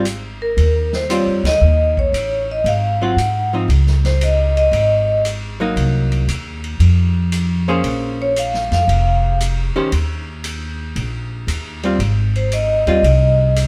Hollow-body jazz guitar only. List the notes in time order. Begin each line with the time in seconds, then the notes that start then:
1.10 G3 C4 F4
3.02 F#3 C4 F4
3.53 F3 C4 D#4
5.60 F#3 A#3 D#4
7.68 A#3 C#4 G#4 C5
9.76 D#3 C#4 G4 C5
11.84 G3 C4 F4
12.87 G3 C4 F4